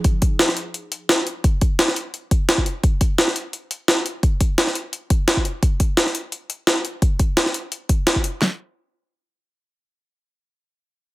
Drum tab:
HH |x-x-x-x-x-x-x-x-|x-x-x-x-x-x-x-x-|x-x-x-x-x-x-x-x-|x-x-x-x-x-x-x-x-|
CP |----------------|----------------|----------------|----------------|
SD |----oo------o---|----oo------o---|----oo------o---|----oo------o---|
BD |o-o-------------|o-o-------o--o--|o-o-------------|o-o-------o--o--|

HH |x-x-x-x-x-x-x-x-|x-x-x-x-x-x-x-x-|----------------|----------------|
CP |----------------|----------------|x---------------|----------------|
SD |----oo------o---|----oo------o---|o---------------|----------------|
BD |o-o-------------|o-o-------o--o--|----------------|----------------|